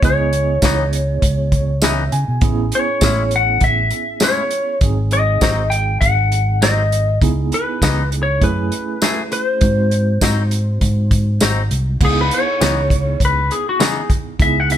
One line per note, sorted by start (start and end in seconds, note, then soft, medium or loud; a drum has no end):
0.03 0.60 C#2 medium
0.03 2.39 B3 medium
0.03 2.39 E4 medium
0.03 2.40 G#4 medium
0.03 2.10 C#5 medium
0.03 2.39 D#5 medium
0.03 kick loud
0.03 closed hi-hat medium
0.33 closed hi-hat medium
0.62 1.19 C#2 medium
0.62 0.83 C#3 medium
0.62 0.83 E3 medium
0.62 0.83 B3 medium
0.62 0.84 D#4 medium
0.62 kick medium
0.62 snare loud
0.62 closed hi-hat medium
0.62 tambourine medium
0.93 closed hi-hat medium
1.22 2.08 C#2 medium
1.22 kick medium
1.22 closed hi-hat medium
1.52 1.81 C#5 medium
1.52 kick medium
1.52 closed hi-hat medium
1.82 2.02 C#3 medium
1.82 2.03 E3 medium
1.82 2.03 B3 medium
1.82 2.03 D#4 medium
1.82 2.11 E5 medium
1.82 snare loud
1.82 closed hi-hat medium
1.82 tambourine loud
2.12 2.27 C#3 medium
2.12 2.41 G#5 medium
2.12 closed hi-hat medium
2.28 2.41 B2 medium
2.41 2.70 A1 medium
2.41 4.78 B3 medium
2.41 4.78 C#4 medium
2.41 4.79 E4 medium
2.41 4.79 G#4 medium
2.41 kick loud
2.41 closed hi-hat medium
2.72 3.36 C#5 medium
2.72 closed hi-hat medium
3.01 3.58 A1 medium
3.01 3.22 A2 medium
3.01 3.22 G#3 medium
3.01 3.22 C#4 medium
3.01 3.23 E4 medium
3.01 kick medium
3.01 snare loud
3.01 closed hi-hat medium
3.01 tambourine medium
3.31 closed hi-hat medium
3.36 3.64 F#5 medium
3.61 3.90 A1 medium
3.61 4.25 E5 loud
3.61 kick medium
3.61 closed hi-hat medium
3.91 closed hi-hat medium
4.20 4.41 A2 medium
4.20 4.42 G#3 medium
4.20 4.42 C#4 medium
4.20 4.42 E4 medium
4.20 4.79 C#5 medium
4.20 snare loud
4.20 closed hi-hat medium
4.20 tambourine loud
4.51 closed hi-hat medium
4.81 5.38 G#1 medium
4.81 7.18 F#3 medium
4.81 7.17 C4 medium
4.81 7.18 D#4 medium
4.81 7.18 G#4 medium
4.81 kick loud
4.81 closed hi-hat medium
5.11 5.74 D#5 medium
5.11 closed hi-hat medium
5.41 5.98 G#1 medium
5.41 5.61 G#2 medium
5.41 5.62 F#3 medium
5.41 5.62 C4 medium
5.41 5.62 D#4 medium
5.41 kick medium
5.41 snare loud
5.41 closed hi-hat medium
5.41 tambourine loud
5.70 6.00 G5 medium
5.70 closed hi-hat medium
6.01 7.18 G#1 medium
6.01 6.63 F#5 medium
6.01 kick medium
6.01 closed hi-hat medium
6.32 closed hi-hat medium
6.62 6.81 G#2 medium
6.62 6.82 F#3 medium
6.62 6.82 C4 medium
6.62 6.82 D#4 medium
6.62 7.18 D#5 medium
6.62 snare loud
6.62 closed hi-hat medium
6.62 tambourine loud
6.92 closed hi-hat medium
7.21 7.50 C#2 medium
7.21 8.39 B3 medium
7.21 8.39 D#4 medium
7.21 8.40 E4 medium
7.21 8.40 G#4 medium
7.21 kick loud
7.21 closed hi-hat medium
7.52 8.09 B4 medium
7.52 closed hi-hat medium
7.82 8.38 C#2 medium
7.82 8.02 C#3 medium
7.82 8.02 E3 medium
7.82 8.02 B3 medium
7.82 8.02 D#4 medium
7.82 kick medium
7.82 snare loud
7.82 closed hi-hat medium
7.82 tambourine loud
8.12 closed hi-hat medium
8.23 8.43 C#5 medium
8.41 8.70 F#2 medium
8.41 9.59 A3 medium
8.41 9.59 C#4 medium
8.41 9.60 E4 medium
8.41 9.60 G#4 medium
8.41 9.32 B4 medium
8.41 kick medium
8.41 closed hi-hat medium
8.72 closed hi-hat medium
9.02 9.21 F#3 medium
9.02 9.21 A3 medium
9.02 9.22 E4 medium
9.02 9.22 G#4 medium
9.02 snare loud
9.02 closed hi-hat medium
9.02 tambourine loud
9.32 11.38 C5 medium
9.32 closed hi-hat medium
9.61 10.18 G#2 medium
9.61 11.97 G#3 medium
9.61 11.97 C4 medium
9.61 11.98 D#4 medium
9.61 11.98 F#4 medium
9.61 kick loud
9.61 closed hi-hat medium
9.91 closed hi-hat medium
10.21 10.78 G#2 loud
10.21 10.41 G#2 medium
10.21 10.42 F#3 medium
10.21 10.42 C4 medium
10.21 10.42 D#4 loud
10.21 kick medium
10.21 snare loud
10.21 closed hi-hat medium
10.21 tambourine loud
10.51 closed hi-hat medium
10.81 11.38 G#2 medium
10.81 kick medium
10.81 closed hi-hat medium
11.11 kick medium
11.11 closed hi-hat medium
11.40 11.68 G#1 medium
11.40 11.61 G#2 medium
11.40 11.61 F#3 medium
11.40 11.61 C4 loud
11.40 11.62 D#4 medium
11.40 snare loud
11.40 closed hi-hat medium
11.40 tambourine loud
11.71 11.98 C2 medium
11.71 closed hi-hat medium
12.00 12.29 C#2 medium
12.00 14.37 B3 medium
12.00 14.37 D#4 medium
12.00 14.37 E4 medium
12.00 14.38 G#4 medium
12.00 kick loud
12.00 crash medium
12.05 12.21 G#4 medium
12.21 12.32 B4 medium
12.31 13.20 C#5 medium
12.31 closed hi-hat medium
12.61 13.17 C#2 medium
12.61 12.80 C#3 medium
12.61 12.80 E3 medium
12.61 12.81 B3 medium
12.61 12.81 D#4 medium
12.61 snare loud
12.61 closed hi-hat medium
12.61 tambourine loud
12.90 kick medium
12.90 closed hi-hat medium
13.20 13.49 C#2 medium
13.20 kick medium
13.20 closed hi-hat medium
13.25 13.52 B4 medium
13.51 13.67 G#4 medium
13.51 closed hi-hat medium
13.69 13.82 F#4 medium
13.80 13.99 C#3 medium
13.80 14.00 E3 medium
13.80 14.00 B3 medium
13.80 14.01 D#4 medium
13.80 14.10 G#4 medium
13.80 snare loud
13.80 closed hi-hat medium
13.80 tambourine loud
14.10 kick medium
14.10 closed hi-hat medium
14.39 14.78 C#2 medium
14.39 14.78 B3 medium
14.39 14.78 D#4 medium
14.39 14.78 E4 medium
14.39 14.78 G#4 medium
14.39 14.60 E5 medium
14.39 kick loud
14.39 closed hi-hat medium
14.60 14.72 F#5 medium
14.70 14.78 E5 medium
14.70 closed hi-hat medium